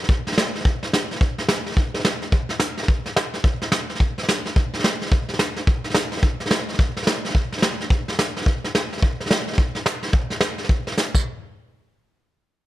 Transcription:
0.04 snare soft
0.09 kick loud
0.09 snare soft
0.27 snare soft
0.32 snare soft
0.38 snare loud
0.38 hi-hat pedal medium
0.55 snare soft
0.61 snare soft
0.65 kick loud
0.65 snare soft
0.83 snare soft
0.93 snare loud
0.93 hi-hat pedal medium
1.11 snare soft
1.16 snare soft
1.21 kick loud
1.21 snare soft
1.38 snare soft
1.49 snare loud
1.49 hi-hat pedal medium
1.66 snare soft
1.72 snare soft
1.77 kick loud
1.77 snare soft
1.94 snare soft
2.00 snare soft
2.05 snare loud
2.05 hi-hat pedal medium
2.22 snare soft
2.32 kick loud
2.32 snare soft
2.49 snare soft
2.60 snare loud
2.60 hi-hat pedal loud
2.77 snare soft
2.83 snare soft
2.88 kick loud
2.88 snare soft
3.06 snare soft
3.16 snare loud
3.16 hi-hat pedal medium
3.34 snare soft
3.44 kick loud
3.44 snare soft
3.62 snare soft
3.72 snare loud
3.72 hi-hat pedal medium
3.90 snare soft
3.95 snare soft
4.00 kick loud
4.00 snare soft
4.18 snare soft
4.23 snare soft
4.29 snare loud
4.29 hi-hat pedal medium
4.46 snare soft
4.56 kick loud
4.56 snare soft
4.74 snare soft
4.79 snare soft
4.84 snare loud
4.84 hi-hat pedal medium
5.01 snare soft
5.06 snare soft
5.11 kick loud
5.11 snare soft
5.29 snare soft
5.34 snare soft
5.39 snare loud
5.39 hi-hat pedal medium
5.56 snare soft
5.67 kick loud
5.67 snare soft
5.84 snare soft
5.90 snare soft
5.94 snare loud
5.94 hi-hat pedal medium
6.12 snare soft
6.17 snare soft
6.22 kick loud
6.22 snare soft
6.40 snare soft
6.46 snare soft
6.51 snare loud
6.51 hi-hat pedal medium
6.69 snare soft
6.74 snare soft
6.79 kick loud
6.79 snare soft
6.97 snare soft
7.03 snare soft
7.07 snare loud
7.07 hi-hat pedal medium
7.25 snare soft
7.30 snare soft
7.35 kick loud
7.35 snare soft
7.52 snare soft
7.58 snare soft
7.62 snare loud
7.62 hi-hat pedal medium
7.80 snare soft
7.90 kick loud
7.90 snare soft
8.08 snare soft
8.14 snare soft
8.19 snare loud
8.19 hi-hat pedal medium
8.36 snare soft
8.42 snare soft
8.46 kick loud
8.46 snare soft
8.64 snare soft
8.75 snare loud
8.75 hi-hat pedal medium
8.93 snare soft
8.98 snare soft
9.02 kick loud
9.02 snare soft
9.20 snare soft
9.26 snare soft
9.31 snare loud
9.31 hi-hat pedal medium
9.47 snare soft
9.53 snare soft
9.58 kick loud
9.58 snare soft
9.75 snare soft
9.86 snare loud
9.86 hi-hat pedal medium
10.03 snare soft
10.08 snare soft
10.13 kick loud
10.13 snare soft
10.30 snare soft
10.41 snare loud
10.41 hi-hat pedal medium
10.58 snare soft
10.64 snare soft
10.69 kick loud
10.69 snare soft
10.87 snare soft
10.92 snare soft
10.98 snare medium
10.98 hi-hat pedal medium
11.15 kick loud
11.15 crash medium

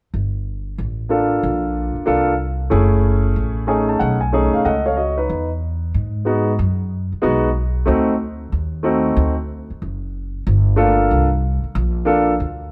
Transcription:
0.14 0.75 G1 medium
0.78 1.39 A1 medium
1.09 2.02 A#3 medium
1.09 2.02 D4 medium
1.09 2.02 F4 medium
1.09 2.02 A4 medium
1.43 1.93 A#1 medium
1.96 muted upright bass stroke soft
2.06 2.68 C2 medium
2.06 2.32 A#3 medium
2.06 2.32 D4 medium
2.06 2.32 F4 medium
2.06 2.32 A4 medium
2.70 3.33 F#1 medium
2.70 3.63 A3 medium
2.70 3.63 C#4 medium
2.70 3.63 E4 medium
2.70 3.64 G#4 medium
3.36 3.97 A1 medium
3.67 4.16 A3 medium
3.67 4.17 C#4 medium
3.67 4.17 D#4 medium
3.67 4.17 G#4 medium
3.67 3.87 G#5 medium
3.89 3.99 A5 medium
3.99 4.51 B1 medium
3.99 4.19 F#5 medium
4.21 4.51 G#5 medium
4.33 4.73 A3 medium
4.33 4.73 C#4 medium
4.33 4.65 D#4 medium
4.33 4.66 G#4 medium
4.54 4.64 F5 medium
4.54 muted upright bass stroke soft
4.65 5.26 C#2 medium
4.65 4.85 A4 soft
4.65 4.84 D#5 medium
4.65 4.85 F#5 medium
4.86 4.97 A4 soft
4.86 5.26 C#5 medium
4.86 4.97 F5 medium
4.97 5.17 F#4 soft
4.97 5.17 D#5 medium
5.17 5.49 D#4 soft
5.17 5.48 B4 medium
5.30 5.91 E2 medium
5.94 6.55 G#2 medium
6.25 6.51 G#3 medium
6.25 6.51 B3 medium
6.25 6.52 D#4 medium
6.25 6.52 F#4 medium
6.59 7.09 F#2 medium
7.12 muted upright bass stroke soft
7.22 7.85 B1 medium
7.22 7.48 G#3 medium
7.22 7.48 B3 medium
7.22 7.48 D#4 medium
7.22 7.48 F#4 medium
7.86 8.49 D2 medium
7.86 8.12 A3 medium
7.86 8.12 C4 medium
7.86 8.12 D#4 medium
7.86 8.13 F#4 medium
8.52 9.13 D#2 medium
8.83 9.32 A3 medium
8.83 9.33 C4 medium
8.83 9.33 D#4 medium
8.83 9.33 F#4 medium
9.17 9.67 D2 loud
9.70 muted upright bass stroke soft
9.82 10.43 F#1 medium
10.47 11.07 G1 loud
10.76 10.85 A3 medium
10.76 11.26 D4 medium
10.76 11.26 F4 medium
10.76 11.26 A4 medium
10.82 11.29 A#3 medium
11.11 11.61 C2 medium
11.64 muted upright bass stroke soft
11.75 12.36 A#1 loud
12.05 12.31 A#3 medium
12.05 12.32 D4 medium
12.05 12.32 F4 medium
12.05 12.32 A4 medium
12.40 12.70 D2 medium

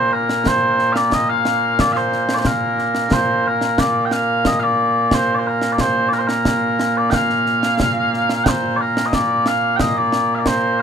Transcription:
0.00 10.82 A#2 medium
0.00 10.82 A#3 medium
0.00 0.13 C5 medium
0.13 0.47 A#4 medium
0.29 snare medium
0.46 0.93 C5 medium
0.46 concert bass drum medium
0.46 snare loud
0.79 snare soft
0.93 0.97 F5 loud
0.93 snare medium
0.97 1.13 D5 loud
1.12 1.29 D#5 loud
1.12 concert bass drum medium
1.12 snare medium
1.29 1.80 F5 loud
1.45 snare medium
1.79 1.93 D5 loud
1.79 concert bass drum medium
1.79 snare loud
1.93 1.97 F5 loud
1.93 snare soft
1.97 2.35 C5 loud
2.12 snare soft
2.29 snare medium
2.35 2.39 D5 medium
2.39 2.46 C5 medium
2.45 3.13 A#4 medium
2.45 concert bass drum medium
2.45 snare loud
2.79 snare soft
2.95 snare medium
3.11 3.47 C5 medium
3.11 concert bass drum medium
3.11 snare loud
3.47 3.79 A#4 medium
3.61 snare medium
3.78 4.05 D5 medium
3.78 concert bass drum medium
3.78 snare loud
4.05 4.12 G5 medium
4.11 4.47 F5 loud
4.11 snare medium
4.45 4.60 D#5 loud
4.45 concert bass drum medium
4.45 snare loud
4.60 5.15 D5 loud
4.60 4.63 F5 loud
5.11 5.35 C5 medium
5.11 concert bass drum medium
5.11 snare loud
5.35 5.47 C5 medium
5.35 5.39 D5 medium
5.47 5.72 A#4 medium
5.62 snare medium
5.72 5.81 D5 medium
5.78 6.09 C5 medium
5.78 concert bass drum medium
5.78 snare medium
6.09 6.13 D5 medium
6.09 snare soft
6.13 6.19 A#4 medium
6.19 6.27 C5 medium
6.27 6.97 A#4 medium
6.27 snare medium
6.45 concert bass drum medium
6.45 snare medium
6.79 snare medium
6.97 7.10 D5 medium
7.10 8.44 F5 loud
7.10 7.14 G5 loud
7.10 concert bass drum medium
7.10 snare loud
7.30 snare soft
7.46 snare soft
7.63 snare medium
7.80 concert bass drum medium
7.80 snare loud
8.14 snare soft
8.29 snare medium
8.44 8.48 G5 medium
8.44 concert bass drum medium
8.44 snare loud
8.48 8.77 C5 medium
8.77 8.81 D5 medium
8.81 9.06 A#4 medium
8.97 snare medium
9.06 9.14 D#5 medium
9.13 9.48 D5 loud
9.13 concert bass drum medium
9.13 snare loud
9.46 9.76 F5 loud
9.46 snare medium
9.76 9.80 G5 medium
9.76 concert bass drum medium
9.76 snare loud
9.80 9.97 D#5 medium
9.97 10.35 D5 loud
10.12 snare medium
10.35 10.39 F5 medium
10.39 10.47 D5 medium
10.46 10.80 C5 medium
10.46 concert bass drum medium
10.46 snare loud

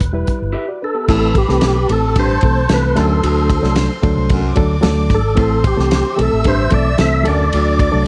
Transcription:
0.00 0.24 E1 medium
0.00 kick medium
0.00 closed hi-hat medium
0.13 0.50 G3 medium
0.13 0.51 E4 medium
0.13 0.51 B4 medium
0.27 muted fingered electric bass stroke soft
0.27 kick medium
0.27 closed hi-hat medium
0.42 0.53 G1 medium
0.52 0.64 E4 medium
0.52 0.65 G4 medium
0.52 0.68 G4 soft
0.52 0.65 B4 medium
0.52 0.65 E5 medium
0.52 0.68 E5 medium
0.68 0.81 F#4 medium
0.68 0.81 D5 medium
0.82 0.95 D4 medium
0.82 1.38 A4 medium
0.82 0.95 B4 medium
0.94 1.20 B3 soft
0.94 1.20 G4 medium
1.08 1.44 A1 loud
1.08 1.30 A2 medium
1.08 1.36 E3 medium
1.08 1.36 A3 medium
1.08 1.37 C4 medium
1.08 1.37 A4 medium
1.08 1.88 B4 medium
1.08 1.88 B5 medium
1.08 kick loud
1.08 crash medium
1.35 1.92 G4 medium
1.35 kick medium
1.35 ride medium
1.48 1.61 C2 medium
1.48 1.76 E3 medium
1.48 1.76 A3 medium
1.48 1.76 C4 medium
1.48 1.77 A4 medium
1.48 snare soft
1.61 1.86 B1 loud
1.61 snare loud
1.61 ride medium
1.89 2.36 A1 medium
1.89 2.26 E3 medium
1.89 2.26 A3 medium
1.89 2.26 C4 medium
1.89 2.94 A4 medium
1.89 2.27 A4 medium
1.89 2.18 A4 medium
1.89 2.95 A5 loud
1.89 ride medium
2.16 2.38 G2 medium
2.16 2.73 C5 loud
2.16 kick medium
2.16 ride medium
2.41 2.66 B1 loud
2.41 2.61 E3 medium
2.41 2.62 A3 medium
2.41 2.61 C4 medium
2.41 2.62 A4 medium
2.41 kick medium
2.41 ride medium
2.69 2.93 C2 loud
2.69 2.96 E3 medium
2.69 2.94 A3 medium
2.69 2.97 C4 medium
2.69 2.95 A4 medium
2.69 snare loud
2.69 ride medium
2.74 2.99 B4 loud
2.95 3.20 D2 loud
2.95 3.18 F#2 medium
2.95 3.50 F#3 medium
2.95 3.50 A3 medium
2.95 3.50 D4 medium
2.95 3.50 A4 medium
2.95 4.54 C5 medium
2.95 4.54 C6 medium
2.95 snare soft
2.95 ride medium
3.01 3.75 A4 loud
3.23 3.61 D2 medium
3.23 3.59 D2 loud
3.23 ride medium
3.50 kick medium
3.50 ride medium
3.62 3.87 C2 medium
3.62 3.90 F#3 medium
3.62 3.91 A3 medium
3.62 3.91 D4 medium
3.62 3.91 A4 medium
3.62 snare soft
3.76 snare loud
3.76 ride medium
4.02 4.15 D2 medium
4.02 4.40 F#3 medium
4.02 4.40 A3 medium
4.02 4.40 D4 medium
4.02 4.40 A4 medium
4.02 kick loud
4.02 ride medium
4.16 4.52 C2 medium
4.29 4.52 F#2 medium
4.29 kick medium
4.29 ride medium
4.55 4.81 D2 medium
4.55 4.75 F#3 loud
4.55 4.75 A3 medium
4.55 4.75 D4 medium
4.55 4.75 A4 loud
4.55 5.36 D5 medium
4.55 5.36 D6 loud
4.55 kick medium
4.55 ride medium
4.81 5.07 D2 loud
4.81 5.19 F#3 medium
4.81 5.20 A3 medium
4.81 5.20 D4 medium
4.81 5.20 A4 loud
4.81 snare loud
4.81 ride medium
5.10 5.34 G#1 medium
5.10 kick loud
5.10 snare soft
5.10 ride medium
5.14 5.39 A4 medium
5.35 5.73 A1 loud
5.35 5.59 A2 medium
5.35 5.64 E3 medium
5.35 5.64 A3 medium
5.35 5.64 C4 medium
5.35 5.65 A4 loud
5.35 6.17 C5 medium
5.35 6.17 C6 medium
5.35 kick loud
5.35 ride medium
5.41 5.64 A4 medium
5.64 5.93 G4 medium
5.64 kick medium
5.64 ride medium
5.76 6.02 C2 medium
5.76 6.05 E3 medium
5.76 6.05 A3 medium
5.76 6.05 C4 medium
5.76 6.05 A4 medium
5.76 snare soft
5.91 6.21 G4 medium
5.91 snare loud
5.91 ride medium
6.16 6.30 B1 medium
6.16 6.54 E3 medium
6.16 6.55 A3 medium
6.16 6.54 C4 medium
6.16 6.55 A4 medium
6.16 7.23 E5 medium
6.16 7.23 E6 loud
6.16 ride medium
6.21 6.47 A4 medium
6.33 6.68 A1 medium
6.44 6.67 G2 medium
6.44 6.74 C5 loud
6.44 kick medium
6.44 ride medium
6.70 6.96 B1 loud
6.70 6.90 E3 medium
6.70 6.90 A3 medium
6.70 6.90 C4 medium
6.70 6.90 A4 medium
6.70 6.98 D5 medium
6.70 kick medium
6.70 ride medium
6.98 7.23 C2 loud
6.98 7.25 E3 medium
6.98 7.22 A3 medium
6.98 7.25 C4 medium
6.98 7.24 A4 medium
6.98 7.27 E5 loud
6.98 snare loud
6.98 ride medium
7.23 7.47 F#2 medium
7.23 7.78 F#3 medium
7.23 7.78 A3 medium
7.23 7.79 D4 medium
7.23 7.79 A4 medium
7.23 8.07 D5 medium
7.23 8.07 D6 medium
7.23 ride medium
7.27 7.50 D2 medium
7.27 8.03 D5 loud
7.53 7.91 D2 medium
7.53 7.88 D2 loud
7.53 ride medium
7.79 kick medium
7.79 ride medium
7.91 8.07 C2 medium
7.91 8.07 F#3 medium
7.91 8.07 A3 medium
7.91 8.07 D4 medium
7.91 8.07 A4 loud

